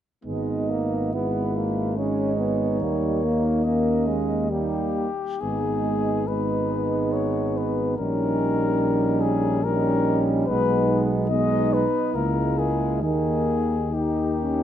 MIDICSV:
0, 0, Header, 1, 6, 480
1, 0, Start_track
1, 0, Key_signature, 5, "minor"
1, 0, Tempo, 890208
1, 136, Time_signature, 3, 2, 24, 8
1, 614, Tempo, 842697
1, 2534, Tempo, 914634
1, 3014, Tempo, 860832
1, 3974, Tempo, 832178
1, 6854, Tempo, 899550
1, 8183, End_track
2, 0, Start_track
2, 0, Title_t, "Flugelhorn"
2, 0, Program_c, 0, 56
2, 136, Note_on_c, 0, 75, 31
2, 592, Note_off_c, 0, 75, 0
2, 618, Note_on_c, 0, 71, 30
2, 1094, Note_on_c, 0, 73, 36
2, 1103, Note_off_c, 0, 71, 0
2, 2037, Note_on_c, 0, 75, 38
2, 2045, Note_off_c, 0, 73, 0
2, 2531, Note_off_c, 0, 75, 0
2, 2534, Note_on_c, 0, 67, 49
2, 3004, Note_on_c, 0, 68, 52
2, 3012, Note_off_c, 0, 67, 0
2, 3488, Note_on_c, 0, 71, 48
2, 3496, Note_off_c, 0, 68, 0
2, 3964, Note_on_c, 0, 73, 47
2, 3972, Note_off_c, 0, 71, 0
2, 4219, Note_on_c, 0, 71, 42
2, 4228, Note_off_c, 0, 73, 0
2, 4448, Note_off_c, 0, 71, 0
2, 4452, Note_on_c, 0, 70, 55
2, 5165, Note_on_c, 0, 68, 55
2, 5174, Note_off_c, 0, 70, 0
2, 5411, Note_on_c, 0, 70, 61
2, 5420, Note_off_c, 0, 68, 0
2, 5785, Note_off_c, 0, 70, 0
2, 5883, Note_on_c, 0, 71, 64
2, 6204, Note_off_c, 0, 71, 0
2, 6365, Note_on_c, 0, 75, 65
2, 6619, Note_on_c, 0, 71, 60
2, 6627, Note_off_c, 0, 75, 0
2, 6857, Note_on_c, 0, 70, 54
2, 6865, Note_off_c, 0, 71, 0
2, 7091, Note_on_c, 0, 68, 51
2, 7099, Note_off_c, 0, 70, 0
2, 7323, Note_off_c, 0, 68, 0
2, 7326, Note_on_c, 0, 68, 58
2, 7814, Note_on_c, 0, 67, 41
2, 7822, Note_off_c, 0, 68, 0
2, 8183, Note_off_c, 0, 67, 0
2, 8183, End_track
3, 0, Start_track
3, 0, Title_t, "French horn section"
3, 0, Program_c, 1, 60
3, 134, Note_on_c, 1, 63, 27
3, 591, Note_off_c, 1, 63, 0
3, 608, Note_on_c, 1, 64, 31
3, 1084, Note_on_c, 1, 63, 33
3, 1089, Note_off_c, 1, 64, 0
3, 2041, Note_off_c, 1, 63, 0
3, 2044, Note_on_c, 1, 61, 39
3, 2526, Note_on_c, 1, 63, 38
3, 2534, Note_off_c, 1, 61, 0
3, 2829, Note_off_c, 1, 63, 0
3, 3009, Note_on_c, 1, 63, 35
3, 3470, Note_off_c, 1, 63, 0
3, 3489, Note_on_c, 1, 63, 35
3, 4439, Note_off_c, 1, 63, 0
3, 4454, Note_on_c, 1, 63, 38
3, 5393, Note_off_c, 1, 63, 0
3, 5404, Note_on_c, 1, 63, 44
3, 5879, Note_off_c, 1, 63, 0
3, 5895, Note_on_c, 1, 63, 40
3, 6359, Note_off_c, 1, 63, 0
3, 6366, Note_on_c, 1, 63, 43
3, 6843, Note_off_c, 1, 63, 0
3, 6849, Note_on_c, 1, 64, 45
3, 7320, Note_on_c, 1, 63, 36
3, 7323, Note_off_c, 1, 64, 0
3, 7716, Note_off_c, 1, 63, 0
3, 7807, Note_on_c, 1, 63, 37
3, 8183, Note_off_c, 1, 63, 0
3, 8183, End_track
4, 0, Start_track
4, 0, Title_t, "Trombone section"
4, 0, Program_c, 2, 61
4, 132, Note_on_c, 2, 59, 27
4, 590, Note_off_c, 2, 59, 0
4, 612, Note_on_c, 2, 56, 30
4, 1079, Note_on_c, 2, 61, 36
4, 1090, Note_off_c, 2, 56, 0
4, 1320, Note_on_c, 2, 59, 33
4, 1325, Note_off_c, 2, 61, 0
4, 1565, Note_off_c, 2, 59, 0
4, 1566, Note_on_c, 2, 58, 38
4, 2521, Note_off_c, 2, 58, 0
4, 2528, Note_on_c, 2, 58, 38
4, 2830, Note_off_c, 2, 58, 0
4, 3006, Note_on_c, 2, 59, 34
4, 3468, Note_off_c, 2, 59, 0
4, 3496, Note_on_c, 2, 59, 34
4, 4442, Note_off_c, 2, 59, 0
4, 4455, Note_on_c, 2, 61, 36
4, 5393, Note_off_c, 2, 61, 0
4, 5415, Note_on_c, 2, 61, 46
4, 5885, Note_off_c, 2, 61, 0
4, 5897, Note_on_c, 2, 59, 46
4, 6365, Note_off_c, 2, 59, 0
4, 6372, Note_on_c, 2, 59, 45
4, 6845, Note_off_c, 2, 59, 0
4, 6857, Note_on_c, 2, 58, 40
4, 7323, Note_off_c, 2, 58, 0
4, 7330, Note_on_c, 2, 58, 36
4, 7716, Note_off_c, 2, 58, 0
4, 7806, Note_on_c, 2, 63, 44
4, 8034, Note_off_c, 2, 63, 0
4, 8061, Note_on_c, 2, 61, 44
4, 8183, Note_off_c, 2, 61, 0
4, 8183, End_track
5, 0, Start_track
5, 0, Title_t, "Trombone"
5, 0, Program_c, 3, 57
5, 136, Note_on_c, 3, 56, 29
5, 377, Note_on_c, 3, 58, 33
5, 385, Note_off_c, 3, 56, 0
5, 611, Note_on_c, 3, 59, 31
5, 620, Note_off_c, 3, 58, 0
5, 852, Note_on_c, 3, 58, 35
5, 860, Note_off_c, 3, 59, 0
5, 1095, Note_on_c, 3, 56, 35
5, 1104, Note_off_c, 3, 58, 0
5, 1573, Note_on_c, 3, 55, 36
5, 1581, Note_off_c, 3, 56, 0
5, 1813, Note_on_c, 3, 58, 40
5, 1821, Note_off_c, 3, 55, 0
5, 2041, Note_off_c, 3, 58, 0
5, 2044, Note_on_c, 3, 58, 40
5, 2284, Note_on_c, 3, 56, 40
5, 2293, Note_off_c, 3, 58, 0
5, 2537, Note_on_c, 3, 55, 36
5, 2545, Note_off_c, 3, 56, 0
5, 2841, Note_off_c, 3, 55, 0
5, 3015, Note_on_c, 3, 56, 34
5, 3473, Note_off_c, 3, 56, 0
5, 3495, Note_on_c, 3, 56, 33
5, 4442, Note_off_c, 3, 56, 0
5, 4455, Note_on_c, 3, 55, 34
5, 5393, Note_off_c, 3, 55, 0
5, 5416, Note_on_c, 3, 55, 43
5, 5899, Note_on_c, 3, 56, 41
5, 5908, Note_off_c, 3, 55, 0
5, 6373, Note_off_c, 3, 56, 0
5, 6376, Note_on_c, 3, 56, 46
5, 6692, Note_off_c, 3, 56, 0
5, 6860, Note_on_c, 3, 56, 40
5, 7327, Note_on_c, 3, 51, 37
5, 7335, Note_off_c, 3, 56, 0
5, 7806, Note_off_c, 3, 51, 0
5, 7809, Note_on_c, 3, 51, 39
5, 8183, Note_off_c, 3, 51, 0
5, 8183, End_track
6, 0, Start_track
6, 0, Title_t, "Tuba"
6, 0, Program_c, 4, 58
6, 141, Note_on_c, 4, 32, 33
6, 1572, Note_on_c, 4, 39, 41
6, 1581, Note_off_c, 4, 32, 0
6, 2840, Note_off_c, 4, 39, 0
6, 3016, Note_on_c, 4, 32, 37
6, 4440, Note_off_c, 4, 32, 0
6, 4464, Note_on_c, 4, 34, 39
6, 5873, Note_off_c, 4, 34, 0
6, 5900, Note_on_c, 4, 35, 50
6, 6683, Note_off_c, 4, 35, 0
6, 6857, Note_on_c, 4, 37, 46
6, 7324, Note_on_c, 4, 39, 42
6, 7332, Note_off_c, 4, 37, 0
6, 8183, Note_off_c, 4, 39, 0
6, 8183, End_track
0, 0, End_of_file